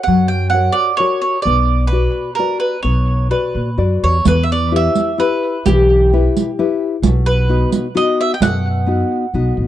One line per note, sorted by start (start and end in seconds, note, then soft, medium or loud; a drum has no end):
0.03 0.67 F#2 medium
0.03 0.27 F#5 medium
0.08 0.53 F#3 medium
0.28 0.49 G5 medium
0.50 0.91 F#4 soft
0.50 0.91 A#4 soft
0.50 0.73 F#5 medium
0.54 0.91 C#5 soft
0.72 0.97 D5 medium
0.97 1.37 F#4 soft
0.97 1.37 A#4 soft
0.97 1.20 C#5 medium
0.97 1.37 C#5 soft
1.22 1.42 C#5 medium
1.42 2.05 B1 medium
1.42 1.91 B3 medium
1.42 1.87 D5 medium
1.87 2.32 B4 medium
1.92 2.29 F#4 soft
1.92 2.30 B4 soft
1.92 2.30 D5 soft
2.35 2.76 F#4 soft
2.35 2.59 A#4 medium
2.39 2.76 B4 soft
2.39 2.76 D5 medium
2.60 2.82 B4 medium
2.83 3.30 B1 medium
2.83 3.29 B3 medium
2.83 3.27 C#5 medium
3.30 3.69 F#4 soft
3.30 3.98 B4 medium
3.30 3.69 B4 soft
3.30 3.69 D5 soft
3.55 3.76 A#2 medium
3.77 3.99 F#2 medium
3.77 4.16 F#4 soft
3.77 4.16 B4 soft
3.77 4.16 D5 soft
4.03 4.24 E2 medium
4.03 4.25 C#5 medium
4.25 4.87 E2 medium
4.25 4.71 E3 medium
4.25 4.43 B4 medium
4.25 riq medium
4.43 4.49 E5 medium
4.52 4.72 D5 medium
4.72 5.09 E4 soft
4.72 5.10 G4 soft
4.72 5.10 B4 soft
4.76 5.19 E5 medium
4.95 riq soft
5.18 5.56 E4 soft
5.18 5.56 G4 soft
5.18 5.57 B4 medium
5.18 5.63 B4 medium
5.66 6.26 B1 medium
5.66 6.11 E3 medium
5.66 6.09 G4 medium
5.66 riq medium
6.13 6.50 E4 soft
6.13 6.50 G4 soft
6.13 6.50 B4 soft
6.37 riq soft
6.59 6.95 E4 medium
6.59 6.95 G4 medium
6.59 6.96 B4 soft
7.02 7.63 B1 medium
7.02 7.49 B2 medium
7.02 riq medium
7.26 7.69 B4 medium
7.49 7.86 B3 soft
7.49 7.86 D#4 soft
7.49 7.86 F#4 soft
7.72 riq medium
7.95 8.32 B3 medium
7.95 8.32 D#4 soft
7.95 8.32 F#4 medium
7.95 8.18 D#5 medium
8.21 8.34 E5 medium
8.34 8.42 G5 medium
8.41 9.01 F#2 medium
8.41 8.87 B2 medium
8.41 9.54 F#5 medium
8.41 riq medium
8.86 9.24 B3 soft
8.86 9.25 D#4 soft
8.86 9.25 F#4 soft
9.34 9.55 B1 medium
9.34 9.67 B3 medium
9.34 9.67 D#4 soft
9.34 9.67 F#4 medium
9.57 9.67 A1 medium